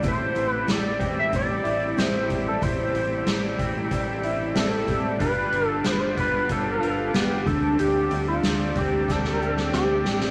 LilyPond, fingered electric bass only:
\new Staff \with { instrumentName = "Fingered electric bass" } { \clef bass \time 4/4 \key a \minor \tempo 4 = 93 a,,8 a,,8 a,,8 a,,8 a,,8 a,,8 a,,4 | a,,8 a,,8 a,,8 a,,8 a,,4 a,,8 a,,8 | g,,8 g,,8 g,,8 g,,8 g,,8 g,,8 g,,8 d,8 | d,8 d,8 d,8 d,8 d,4 d,8 a,,8 | }